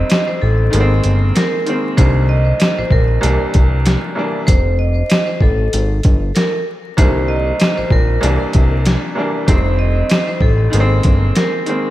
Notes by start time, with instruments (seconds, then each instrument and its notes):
Already playing: upright piano F2 D#3 G3 A3 C4
0.10 vibraphone D#5, snare, closed hi-hat
0.28 vibraphone C5
0.42 analog synth bass A1, vibraphone A4
0.70 analog synth bass G#1, upright piano D#3 G#3 A#3 B3, closed hi-hat
0.80 upright piano C4
1.04 analog synth bass G1, closed hi-hat
1.35 vibraphone A#4, snare, closed hi-hat
1.66 upright piano D#3 G#3 A#3 C4, closed hi-hat
1.97 upright piano C2 D3 D#3 G3 A#3, analog synth bass C2, vibraphone C5, kick, closed hi-hat
2.29 vibraphone D#5
2.60 vibraphone D#5, snare, closed hi-hat
2.78 analog synth bass A#1, vibraphone C5
2.91 analog synth bass A#1, vibraphone A#4, kick
3.21 upright piano C2 E3 G3 A#3 D4, analog synth bass C2, closed hi-hat
3.41 analog synth bass C2
3.54 analog synth bass C2, kick, closed hi-hat
3.86 snare, closed hi-hat
4.15 upright piano C2 E3 G3 A#3 D4
4.47 analog synth bass F1, vibraphone C5, kick, closed hi-hat
4.79 vibraphone D#5
5.10 vibraphone D#5, snare, closed hi-hat
5.26 vibraphone C5
5.41 analog synth bass A1, vibraphone A4, kick
5.73 analog synth bass G#1, closed hi-hat
6.03 analog synth bass G1, kick, closed hi-hat
6.35 vibraphone A#4, snare, closed hi-hat
6.97 upright piano C2 D3 D#3 G3 A#3, analog synth bass C2, vibraphone C5, kick, closed hi-hat
7.28 vibraphone D#5
7.60 vibraphone D#5, snare, closed hi-hat
7.77 analog synth bass A#1, vibraphone C5
7.91 analog synth bass A#1, vibraphone A#4, kick
8.21 upright piano C2 E3 G3 A#3 D4, analog synth bass C2, closed hi-hat
8.41 analog synth bass C2
8.53 analog synth bass C2, kick, closed hi-hat
8.85 snare, closed hi-hat
9.15 upright piano C2 E3 G3 A#3 D4
9.46 analog synth bass F1, upright piano F2 D#3 G3 A3 C4, vibraphone C5, kick, closed hi-hat
9.79 vibraphone D#5
10.10 vibraphone D#5, snare, closed hi-hat
10.28 vibraphone C5
10.41 analog synth bass A1, vibraphone A4, kick
10.70 analog synth bass G#1, upright piano D#3 G#3 A#3 B3, closed hi-hat
10.80 upright piano C4
11.03 analog synth bass G1, kick, closed hi-hat
11.35 vibraphone A#4, snare, closed hi-hat
11.66 upright piano D#3 G#3 A#3 C4, closed hi-hat